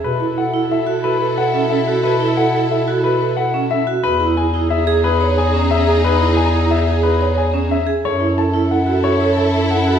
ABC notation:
X:1
M:6/4
L:1/8
Q:1/4=180
K:E
V:1 name="Grand piano"
B z f z e z B z f z e z | B z f z e z B z f z e z | B z g z e z B z g z e z | B z g z e z B z g z e z |
c z a z f z c z a z f z |]
V:2 name="Clarinet"
A A A A A A A A A A A A | A A A A A A A A A A A z | G G G G G G G G G G G G | G G G G G G G G G G G z |
A A A A A A A A A A A A |]
V:3 name="String section"
[EA]12- | [EA]8- [EA]3 z | [DG]12- | [DG]8- [DG]3 z |
[EA]12 |]
V:4 name="Vibraphone"
z E z E z F z B z C z F | z E z E z F z B z C z F | z E z E z G z c z C z G | z E z E z G z c z C z G |
z E z E z F z c z C z F |]
V:5 name="Bass clarinet" clef=bass
B,,12- | B,,12 | E,,12- | E,,12 |
F,,12 |]